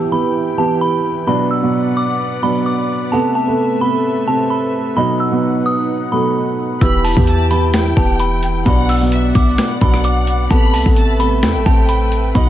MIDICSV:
0, 0, Header, 1, 7, 480
1, 0, Start_track
1, 0, Tempo, 461538
1, 1326, Time_signature, 4, 2, 24, 8
1, 12992, End_track
2, 0, Start_track
2, 0, Title_t, "Synth bell"
2, 0, Program_c, 0, 98
2, 127, Note_on_c, 0, 83, 88
2, 578, Note_off_c, 0, 83, 0
2, 605, Note_on_c, 0, 81, 78
2, 794, Note_off_c, 0, 81, 0
2, 846, Note_on_c, 0, 83, 98
2, 1297, Note_off_c, 0, 83, 0
2, 1326, Note_on_c, 0, 83, 93
2, 1515, Note_off_c, 0, 83, 0
2, 1568, Note_on_c, 0, 88, 74
2, 2018, Note_off_c, 0, 88, 0
2, 2047, Note_on_c, 0, 86, 89
2, 2498, Note_off_c, 0, 86, 0
2, 2527, Note_on_c, 0, 83, 93
2, 2715, Note_off_c, 0, 83, 0
2, 2767, Note_on_c, 0, 86, 85
2, 3218, Note_off_c, 0, 86, 0
2, 3244, Note_on_c, 0, 81, 88
2, 3434, Note_off_c, 0, 81, 0
2, 3486, Note_on_c, 0, 81, 83
2, 3937, Note_off_c, 0, 81, 0
2, 3966, Note_on_c, 0, 83, 91
2, 4417, Note_off_c, 0, 83, 0
2, 4446, Note_on_c, 0, 81, 92
2, 4635, Note_off_c, 0, 81, 0
2, 4683, Note_on_c, 0, 83, 76
2, 5136, Note_off_c, 0, 83, 0
2, 5165, Note_on_c, 0, 83, 94
2, 5354, Note_off_c, 0, 83, 0
2, 5408, Note_on_c, 0, 88, 80
2, 5858, Note_off_c, 0, 88, 0
2, 5885, Note_on_c, 0, 87, 93
2, 6336, Note_off_c, 0, 87, 0
2, 6365, Note_on_c, 0, 83, 82
2, 7044, Note_off_c, 0, 83, 0
2, 7087, Note_on_c, 0, 88, 93
2, 7275, Note_off_c, 0, 88, 0
2, 7325, Note_on_c, 0, 81, 70
2, 7776, Note_off_c, 0, 81, 0
2, 7807, Note_on_c, 0, 83, 85
2, 8258, Note_off_c, 0, 83, 0
2, 8286, Note_on_c, 0, 81, 75
2, 8475, Note_off_c, 0, 81, 0
2, 8527, Note_on_c, 0, 83, 91
2, 8978, Note_off_c, 0, 83, 0
2, 9007, Note_on_c, 0, 83, 91
2, 9195, Note_off_c, 0, 83, 0
2, 9249, Note_on_c, 0, 88, 76
2, 9699, Note_off_c, 0, 88, 0
2, 9727, Note_on_c, 0, 86, 94
2, 10178, Note_off_c, 0, 86, 0
2, 10208, Note_on_c, 0, 83, 90
2, 10396, Note_off_c, 0, 83, 0
2, 10448, Note_on_c, 0, 86, 85
2, 10898, Note_off_c, 0, 86, 0
2, 10925, Note_on_c, 0, 81, 90
2, 11114, Note_off_c, 0, 81, 0
2, 11165, Note_on_c, 0, 81, 83
2, 11617, Note_off_c, 0, 81, 0
2, 11646, Note_on_c, 0, 83, 89
2, 12097, Note_off_c, 0, 83, 0
2, 12126, Note_on_c, 0, 81, 89
2, 12315, Note_off_c, 0, 81, 0
2, 12364, Note_on_c, 0, 83, 79
2, 12816, Note_off_c, 0, 83, 0
2, 12846, Note_on_c, 0, 83, 93
2, 12992, Note_off_c, 0, 83, 0
2, 12992, End_track
3, 0, Start_track
3, 0, Title_t, "Violin section"
3, 0, Program_c, 1, 48
3, 7085, Note_on_c, 1, 83, 104
3, 7537, Note_off_c, 1, 83, 0
3, 7567, Note_on_c, 1, 81, 91
3, 8018, Note_off_c, 1, 81, 0
3, 8046, Note_on_c, 1, 79, 96
3, 8964, Note_off_c, 1, 79, 0
3, 9006, Note_on_c, 1, 78, 115
3, 9457, Note_off_c, 1, 78, 0
3, 9486, Note_on_c, 1, 76, 78
3, 9937, Note_off_c, 1, 76, 0
3, 9966, Note_on_c, 1, 78, 95
3, 10885, Note_off_c, 1, 78, 0
3, 10926, Note_on_c, 1, 83, 120
3, 11377, Note_off_c, 1, 83, 0
3, 11406, Note_on_c, 1, 81, 93
3, 11857, Note_off_c, 1, 81, 0
3, 11886, Note_on_c, 1, 79, 87
3, 12804, Note_off_c, 1, 79, 0
3, 12846, Note_on_c, 1, 78, 117
3, 12992, Note_off_c, 1, 78, 0
3, 12992, End_track
4, 0, Start_track
4, 0, Title_t, "Analog synth pad"
4, 0, Program_c, 2, 89
4, 0, Note_on_c, 2, 52, 83
4, 0, Note_on_c, 2, 64, 74
4, 0, Note_on_c, 2, 71, 77
4, 0, Note_on_c, 2, 79, 92
4, 1307, Note_off_c, 2, 52, 0
4, 1307, Note_off_c, 2, 64, 0
4, 1307, Note_off_c, 2, 79, 0
4, 1326, Note_on_c, 2, 59, 84
4, 1326, Note_on_c, 2, 74, 77
4, 1326, Note_on_c, 2, 78, 94
4, 3227, Note_off_c, 2, 59, 0
4, 3227, Note_off_c, 2, 74, 0
4, 3227, Note_off_c, 2, 78, 0
4, 3246, Note_on_c, 2, 57, 83
4, 3246, Note_on_c, 2, 69, 78
4, 3246, Note_on_c, 2, 76, 94
4, 5147, Note_off_c, 2, 57, 0
4, 5147, Note_off_c, 2, 69, 0
4, 5147, Note_off_c, 2, 76, 0
4, 5166, Note_on_c, 2, 59, 83
4, 5166, Note_on_c, 2, 78, 92
4, 5167, Note_on_c, 2, 63, 76
4, 7067, Note_off_c, 2, 59, 0
4, 7067, Note_off_c, 2, 63, 0
4, 7067, Note_off_c, 2, 78, 0
4, 7086, Note_on_c, 2, 52, 87
4, 7086, Note_on_c, 2, 64, 76
4, 7086, Note_on_c, 2, 79, 94
4, 8987, Note_off_c, 2, 52, 0
4, 8987, Note_off_c, 2, 64, 0
4, 8987, Note_off_c, 2, 79, 0
4, 9006, Note_on_c, 2, 59, 85
4, 9006, Note_on_c, 2, 74, 80
4, 9006, Note_on_c, 2, 78, 90
4, 10884, Note_off_c, 2, 71, 0
4, 10907, Note_off_c, 2, 59, 0
4, 10907, Note_off_c, 2, 74, 0
4, 10907, Note_off_c, 2, 78, 0
4, 10925, Note_on_c, 2, 69, 78
4, 10926, Note_on_c, 2, 57, 85
4, 10926, Note_on_c, 2, 71, 76
4, 10926, Note_on_c, 2, 76, 93
4, 12827, Note_off_c, 2, 57, 0
4, 12827, Note_off_c, 2, 69, 0
4, 12827, Note_off_c, 2, 76, 0
4, 12845, Note_on_c, 2, 63, 78
4, 12845, Note_on_c, 2, 78, 94
4, 12846, Note_on_c, 2, 59, 84
4, 12992, Note_off_c, 2, 59, 0
4, 12992, Note_off_c, 2, 63, 0
4, 12992, Note_off_c, 2, 71, 0
4, 12992, Note_off_c, 2, 78, 0
4, 12992, End_track
5, 0, Start_track
5, 0, Title_t, "Grand piano"
5, 0, Program_c, 3, 0
5, 0, Control_c, 3, 64, 127
5, 0, Note_on_c, 3, 52, 79
5, 0, Note_on_c, 3, 59, 74
5, 0, Note_on_c, 3, 67, 87
5, 118, Note_off_c, 3, 52, 0
5, 118, Note_on_c, 3, 52, 70
5, 126, Note_off_c, 3, 59, 0
5, 126, Note_on_c, 3, 59, 61
5, 134, Note_off_c, 3, 67, 0
5, 134, Note_on_c, 3, 67, 76
5, 452, Note_off_c, 3, 52, 0
5, 456, Note_off_c, 3, 59, 0
5, 460, Note_off_c, 3, 67, 0
5, 597, Note_on_c, 3, 52, 72
5, 605, Note_on_c, 3, 59, 78
5, 613, Note_on_c, 3, 67, 86
5, 1089, Note_off_c, 3, 52, 0
5, 1093, Note_off_c, 3, 59, 0
5, 1097, Note_off_c, 3, 67, 0
5, 1319, Note_on_c, 3, 47, 101
5, 1327, Note_on_c, 3, 54, 85
5, 1335, Note_on_c, 3, 62, 104
5, 1341, Control_c, 3, 64, 0
5, 1540, Control_c, 3, 64, 127
5, 1566, Note_off_c, 3, 47, 0
5, 1570, Note_off_c, 3, 54, 0
5, 1574, Note_off_c, 3, 62, 0
5, 1689, Note_on_c, 3, 47, 83
5, 1697, Note_on_c, 3, 54, 71
5, 1705, Note_on_c, 3, 59, 86
5, 2254, Note_off_c, 3, 47, 0
5, 2258, Note_off_c, 3, 54, 0
5, 2262, Note_off_c, 3, 59, 0
5, 2518, Note_on_c, 3, 47, 74
5, 2526, Note_on_c, 3, 54, 75
5, 2534, Note_on_c, 3, 62, 84
5, 3009, Note_off_c, 3, 47, 0
5, 3013, Note_off_c, 3, 54, 0
5, 3017, Note_off_c, 3, 62, 0
5, 3240, Note_on_c, 3, 48, 99
5, 3248, Note_on_c, 3, 57, 89
5, 3256, Note_on_c, 3, 59, 121
5, 3258, Control_c, 3, 64, 0
5, 3444, Control_c, 3, 64, 127
5, 3487, Note_off_c, 3, 48, 0
5, 3491, Note_off_c, 3, 57, 0
5, 3495, Note_off_c, 3, 59, 0
5, 3607, Note_on_c, 3, 48, 81
5, 3614, Note_on_c, 3, 57, 79
5, 3622, Note_on_c, 3, 59, 89
5, 3853, Note_off_c, 3, 48, 0
5, 3857, Note_off_c, 3, 57, 0
5, 3861, Note_off_c, 3, 59, 0
5, 3955, Note_on_c, 3, 48, 67
5, 3963, Note_on_c, 3, 57, 69
5, 3971, Note_on_c, 3, 59, 85
5, 4290, Note_off_c, 3, 48, 0
5, 4294, Note_off_c, 3, 57, 0
5, 4298, Note_off_c, 3, 59, 0
5, 4439, Note_on_c, 3, 48, 87
5, 4447, Note_on_c, 3, 57, 70
5, 4455, Note_on_c, 3, 60, 89
5, 4930, Note_off_c, 3, 48, 0
5, 4933, Note_off_c, 3, 57, 0
5, 4937, Note_off_c, 3, 60, 0
5, 5160, Note_on_c, 3, 47, 100
5, 5168, Note_on_c, 3, 54, 84
5, 5176, Note_on_c, 3, 63, 108
5, 5180, Control_c, 3, 64, 0
5, 5341, Control_c, 3, 64, 127
5, 5407, Note_off_c, 3, 47, 0
5, 5411, Note_off_c, 3, 54, 0
5, 5414, Note_off_c, 3, 63, 0
5, 5524, Note_on_c, 3, 47, 75
5, 5532, Note_on_c, 3, 54, 69
5, 5540, Note_on_c, 3, 59, 80
5, 6091, Note_off_c, 3, 47, 0
5, 6095, Note_off_c, 3, 54, 0
5, 6099, Note_off_c, 3, 59, 0
5, 6359, Note_on_c, 3, 47, 69
5, 6367, Note_on_c, 3, 54, 68
5, 6375, Note_on_c, 3, 57, 91
5, 6850, Note_off_c, 3, 47, 0
5, 6854, Note_off_c, 3, 54, 0
5, 6858, Note_off_c, 3, 57, 0
5, 7084, Note_on_c, 3, 52, 93
5, 7092, Note_on_c, 3, 59, 96
5, 7100, Control_c, 3, 64, 0
5, 7100, Note_on_c, 3, 67, 108
5, 7296, Control_c, 3, 64, 127
5, 7329, Note_off_c, 3, 52, 0
5, 7333, Note_off_c, 3, 59, 0
5, 7336, Note_off_c, 3, 67, 0
5, 7442, Note_on_c, 3, 52, 80
5, 7450, Note_on_c, 3, 59, 75
5, 7457, Note_on_c, 3, 67, 85
5, 7691, Note_off_c, 3, 52, 0
5, 7695, Note_off_c, 3, 59, 0
5, 7698, Note_off_c, 3, 67, 0
5, 7799, Note_on_c, 3, 52, 69
5, 7807, Note_on_c, 3, 59, 65
5, 7815, Note_on_c, 3, 67, 77
5, 8132, Note_off_c, 3, 52, 0
5, 8136, Note_off_c, 3, 59, 0
5, 8140, Note_off_c, 3, 67, 0
5, 8278, Note_on_c, 3, 52, 71
5, 8285, Note_on_c, 3, 59, 73
5, 8293, Note_on_c, 3, 67, 85
5, 8769, Note_off_c, 3, 52, 0
5, 8773, Note_off_c, 3, 59, 0
5, 8777, Note_off_c, 3, 67, 0
5, 8999, Note_on_c, 3, 47, 104
5, 9007, Note_on_c, 3, 54, 85
5, 9015, Note_on_c, 3, 62, 106
5, 9020, Control_c, 3, 64, 0
5, 9214, Control_c, 3, 64, 127
5, 9246, Note_off_c, 3, 47, 0
5, 9250, Note_off_c, 3, 54, 0
5, 9254, Note_off_c, 3, 62, 0
5, 9370, Note_on_c, 3, 47, 83
5, 9378, Note_on_c, 3, 54, 72
5, 9386, Note_on_c, 3, 59, 88
5, 9934, Note_off_c, 3, 47, 0
5, 9938, Note_off_c, 3, 54, 0
5, 9942, Note_off_c, 3, 59, 0
5, 10199, Note_on_c, 3, 47, 77
5, 10207, Note_on_c, 3, 54, 75
5, 10215, Note_on_c, 3, 62, 87
5, 10690, Note_off_c, 3, 47, 0
5, 10693, Note_off_c, 3, 54, 0
5, 10697, Note_off_c, 3, 62, 0
5, 10920, Note_on_c, 3, 48, 100
5, 10928, Note_on_c, 3, 57, 94
5, 10936, Note_on_c, 3, 59, 122
5, 10937, Control_c, 3, 64, 0
5, 11097, Control_c, 3, 64, 127
5, 11167, Note_off_c, 3, 48, 0
5, 11171, Note_off_c, 3, 57, 0
5, 11174, Note_off_c, 3, 59, 0
5, 11287, Note_on_c, 3, 48, 83
5, 11295, Note_on_c, 3, 57, 78
5, 11302, Note_on_c, 3, 59, 88
5, 11533, Note_off_c, 3, 48, 0
5, 11537, Note_off_c, 3, 57, 0
5, 11541, Note_off_c, 3, 59, 0
5, 11636, Note_on_c, 3, 48, 67
5, 11644, Note_on_c, 3, 57, 72
5, 11652, Note_on_c, 3, 59, 86
5, 11970, Note_off_c, 3, 48, 0
5, 11974, Note_off_c, 3, 57, 0
5, 11978, Note_off_c, 3, 59, 0
5, 12119, Note_on_c, 3, 48, 84
5, 12127, Note_on_c, 3, 57, 71
5, 12134, Note_on_c, 3, 60, 94
5, 12609, Note_off_c, 3, 48, 0
5, 12613, Note_off_c, 3, 57, 0
5, 12617, Note_off_c, 3, 60, 0
5, 12839, Note_on_c, 3, 47, 103
5, 12847, Note_on_c, 3, 54, 85
5, 12855, Note_on_c, 3, 63, 106
5, 12860, Control_c, 3, 64, 0
5, 12992, Note_off_c, 3, 47, 0
5, 12992, Note_off_c, 3, 54, 0
5, 12992, Note_off_c, 3, 63, 0
5, 12992, End_track
6, 0, Start_track
6, 0, Title_t, "808-style bass"
6, 0, Program_c, 4, 38
6, 7086, Note_on_c, 4, 28, 114
6, 7439, Note_off_c, 4, 28, 0
6, 7454, Note_on_c, 4, 40, 104
6, 8253, Note_off_c, 4, 40, 0
6, 8287, Note_on_c, 4, 28, 110
6, 8978, Note_off_c, 4, 28, 0
6, 9006, Note_on_c, 4, 35, 110
6, 9697, Note_off_c, 4, 35, 0
6, 9725, Note_on_c, 4, 35, 106
6, 9956, Note_off_c, 4, 35, 0
6, 10207, Note_on_c, 4, 35, 110
6, 10898, Note_off_c, 4, 35, 0
6, 10926, Note_on_c, 4, 33, 108
6, 11166, Note_on_c, 4, 36, 97
6, 11182, Note_off_c, 4, 33, 0
6, 11287, Note_off_c, 4, 36, 0
6, 11294, Note_on_c, 4, 33, 106
6, 11886, Note_on_c, 4, 40, 103
6, 11902, Note_off_c, 4, 33, 0
6, 12013, Note_on_c, 4, 33, 101
6, 12029, Note_off_c, 4, 40, 0
6, 12120, Note_off_c, 4, 33, 0
6, 12127, Note_on_c, 4, 33, 108
6, 12818, Note_off_c, 4, 33, 0
6, 12846, Note_on_c, 4, 35, 111
6, 12992, Note_off_c, 4, 35, 0
6, 12992, End_track
7, 0, Start_track
7, 0, Title_t, "Drums"
7, 7086, Note_on_c, 9, 36, 104
7, 7086, Note_on_c, 9, 42, 91
7, 7190, Note_off_c, 9, 36, 0
7, 7190, Note_off_c, 9, 42, 0
7, 7326, Note_on_c, 9, 46, 79
7, 7430, Note_off_c, 9, 46, 0
7, 7454, Note_on_c, 9, 36, 104
7, 7558, Note_off_c, 9, 36, 0
7, 7564, Note_on_c, 9, 42, 88
7, 7668, Note_off_c, 9, 42, 0
7, 7807, Note_on_c, 9, 42, 76
7, 7911, Note_off_c, 9, 42, 0
7, 8046, Note_on_c, 9, 38, 125
7, 8046, Note_on_c, 9, 42, 79
7, 8048, Note_on_c, 9, 26, 93
7, 8150, Note_off_c, 9, 38, 0
7, 8150, Note_off_c, 9, 42, 0
7, 8152, Note_off_c, 9, 26, 0
7, 8286, Note_on_c, 9, 42, 84
7, 8287, Note_on_c, 9, 36, 105
7, 8390, Note_off_c, 9, 42, 0
7, 8391, Note_off_c, 9, 36, 0
7, 8523, Note_on_c, 9, 42, 87
7, 8627, Note_off_c, 9, 42, 0
7, 8764, Note_on_c, 9, 42, 82
7, 8868, Note_off_c, 9, 42, 0
7, 9006, Note_on_c, 9, 36, 102
7, 9006, Note_on_c, 9, 42, 89
7, 9110, Note_off_c, 9, 36, 0
7, 9110, Note_off_c, 9, 42, 0
7, 9246, Note_on_c, 9, 46, 80
7, 9350, Note_off_c, 9, 46, 0
7, 9483, Note_on_c, 9, 42, 88
7, 9587, Note_off_c, 9, 42, 0
7, 9726, Note_on_c, 9, 36, 91
7, 9728, Note_on_c, 9, 42, 76
7, 9830, Note_off_c, 9, 36, 0
7, 9832, Note_off_c, 9, 42, 0
7, 9966, Note_on_c, 9, 38, 122
7, 9966, Note_on_c, 9, 42, 78
7, 9968, Note_on_c, 9, 26, 100
7, 10070, Note_off_c, 9, 38, 0
7, 10070, Note_off_c, 9, 42, 0
7, 10072, Note_off_c, 9, 26, 0
7, 10206, Note_on_c, 9, 42, 84
7, 10207, Note_on_c, 9, 36, 106
7, 10310, Note_off_c, 9, 42, 0
7, 10311, Note_off_c, 9, 36, 0
7, 10334, Note_on_c, 9, 37, 96
7, 10438, Note_off_c, 9, 37, 0
7, 10443, Note_on_c, 9, 42, 91
7, 10547, Note_off_c, 9, 42, 0
7, 10683, Note_on_c, 9, 42, 80
7, 10787, Note_off_c, 9, 42, 0
7, 10926, Note_on_c, 9, 36, 105
7, 10926, Note_on_c, 9, 42, 89
7, 11030, Note_off_c, 9, 36, 0
7, 11030, Note_off_c, 9, 42, 0
7, 11166, Note_on_c, 9, 46, 78
7, 11270, Note_off_c, 9, 46, 0
7, 11294, Note_on_c, 9, 36, 100
7, 11398, Note_off_c, 9, 36, 0
7, 11403, Note_on_c, 9, 42, 88
7, 11507, Note_off_c, 9, 42, 0
7, 11647, Note_on_c, 9, 42, 76
7, 11751, Note_off_c, 9, 42, 0
7, 11886, Note_on_c, 9, 38, 125
7, 11886, Note_on_c, 9, 42, 77
7, 11887, Note_on_c, 9, 26, 97
7, 11990, Note_off_c, 9, 38, 0
7, 11990, Note_off_c, 9, 42, 0
7, 11991, Note_off_c, 9, 26, 0
7, 12127, Note_on_c, 9, 36, 105
7, 12127, Note_on_c, 9, 42, 83
7, 12231, Note_off_c, 9, 36, 0
7, 12231, Note_off_c, 9, 42, 0
7, 12363, Note_on_c, 9, 42, 88
7, 12467, Note_off_c, 9, 42, 0
7, 12603, Note_on_c, 9, 42, 79
7, 12707, Note_off_c, 9, 42, 0
7, 12846, Note_on_c, 9, 36, 106
7, 12846, Note_on_c, 9, 42, 87
7, 12950, Note_off_c, 9, 36, 0
7, 12950, Note_off_c, 9, 42, 0
7, 12992, End_track
0, 0, End_of_file